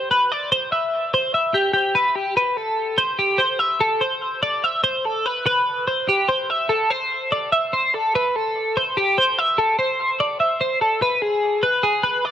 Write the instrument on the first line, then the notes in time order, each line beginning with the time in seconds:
clean electric guitar
Already playing: C5
0.11 B4
0.32 D5
0.52 C5
0.72 E5
1.14 C5
1.34 E5
1.54 G4
1.73 G4
1.95 B4
2.15 G4
2.37 B4
2.57 A4
2.98 C5
3.19 G4
3.38 C5
3.59 E5
3.81 A4
4.01 C5
4.43 D5
4.64 E5
4.84 C5
5.05 A4
5.26 B4
5.46 B4
5.88 C5
6.09 G4
6.29 C5
6.50 E5
6.69 A4
6.91 C5
7.32 D5
7.52 E5
7.73 C5
7.94 A4
8.15 B4
8.36 A4
8.77 C5
8.97 G4
9.18 C5
9.39 E5
9.58 A4
9.79 C5
10.20 D5
10.40 E5
10.61 C5
10.81 A4
11.02 B4
11.22 G#4
11.63 B4
11.83 G#4
12.03 B4
12.25 D5